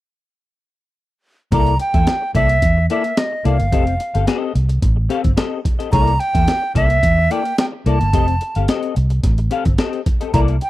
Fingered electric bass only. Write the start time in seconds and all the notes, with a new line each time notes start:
1.52 C2
1.95 E2
2.35 C2
2.63 E2
3.45 C2
3.60 G1
3.73 F1
4.15 G1
4.55 C2
4.83 A1
5.25 G1
5.93 C2
6.35 E2
6.76 C2
7.03 E2
7.86 C2
8.01 G1
8.14 F1
8.56 G1
8.97 C2
9.24 A1
9.66 G1
10.34 C2